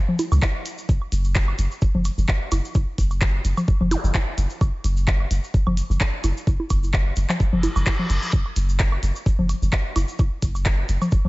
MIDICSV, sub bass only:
0, 0, Header, 1, 2, 480
1, 0, Start_track
1, 0, Tempo, 465116
1, 918, Time_signature, 4, 2, 24, 8
1, 11648, End_track
2, 0, Start_track
2, 0, Title_t, "Sub bass"
2, 0, Program_c, 0, 38
2, 328, Note_on_c, 0, 37, 87
2, 401, Note_off_c, 0, 37, 0
2, 918, Note_on_c, 0, 30, 104
2, 1004, Note_off_c, 0, 30, 0
2, 1158, Note_on_c, 0, 30, 96
2, 1579, Note_off_c, 0, 30, 0
2, 1639, Note_on_c, 0, 30, 101
2, 1725, Note_off_c, 0, 30, 0
2, 2009, Note_on_c, 0, 30, 83
2, 2161, Note_off_c, 0, 30, 0
2, 2249, Note_on_c, 0, 30, 81
2, 2321, Note_off_c, 0, 30, 0
2, 2599, Note_on_c, 0, 30, 105
2, 2685, Note_off_c, 0, 30, 0
2, 2839, Note_on_c, 0, 30, 105
2, 2925, Note_off_c, 0, 30, 0
2, 3078, Note_on_c, 0, 30, 95
2, 3499, Note_off_c, 0, 30, 0
2, 3558, Note_on_c, 0, 30, 99
2, 3645, Note_off_c, 0, 30, 0
2, 3928, Note_on_c, 0, 30, 85
2, 4080, Note_off_c, 0, 30, 0
2, 4169, Note_on_c, 0, 30, 80
2, 4241, Note_off_c, 0, 30, 0
2, 4519, Note_on_c, 0, 30, 104
2, 4605, Note_off_c, 0, 30, 0
2, 4759, Note_on_c, 0, 30, 96
2, 4845, Note_off_c, 0, 30, 0
2, 4999, Note_on_c, 0, 30, 91
2, 5419, Note_off_c, 0, 30, 0
2, 5479, Note_on_c, 0, 30, 99
2, 5565, Note_off_c, 0, 30, 0
2, 5849, Note_on_c, 0, 30, 88
2, 6001, Note_off_c, 0, 30, 0
2, 6089, Note_on_c, 0, 30, 79
2, 6161, Note_off_c, 0, 30, 0
2, 6439, Note_on_c, 0, 30, 103
2, 6525, Note_off_c, 0, 30, 0
2, 6679, Note_on_c, 0, 30, 98
2, 6765, Note_off_c, 0, 30, 0
2, 6919, Note_on_c, 0, 30, 96
2, 7339, Note_off_c, 0, 30, 0
2, 7398, Note_on_c, 0, 30, 95
2, 7484, Note_off_c, 0, 30, 0
2, 7768, Note_on_c, 0, 30, 84
2, 7920, Note_off_c, 0, 30, 0
2, 8008, Note_on_c, 0, 30, 79
2, 8081, Note_off_c, 0, 30, 0
2, 8357, Note_on_c, 0, 30, 105
2, 8444, Note_off_c, 0, 30, 0
2, 8598, Note_on_c, 0, 30, 100
2, 8684, Note_off_c, 0, 30, 0
2, 8838, Note_on_c, 0, 30, 92
2, 9259, Note_off_c, 0, 30, 0
2, 9318, Note_on_c, 0, 30, 97
2, 9405, Note_off_c, 0, 30, 0
2, 9688, Note_on_c, 0, 30, 85
2, 9840, Note_off_c, 0, 30, 0
2, 9929, Note_on_c, 0, 30, 80
2, 10002, Note_off_c, 0, 30, 0
2, 10278, Note_on_c, 0, 30, 105
2, 10364, Note_off_c, 0, 30, 0
2, 10518, Note_on_c, 0, 30, 103
2, 10605, Note_off_c, 0, 30, 0
2, 10758, Note_on_c, 0, 30, 89
2, 11179, Note_off_c, 0, 30, 0
2, 11239, Note_on_c, 0, 30, 97
2, 11325, Note_off_c, 0, 30, 0
2, 11610, Note_on_c, 0, 30, 81
2, 11648, Note_off_c, 0, 30, 0
2, 11648, End_track
0, 0, End_of_file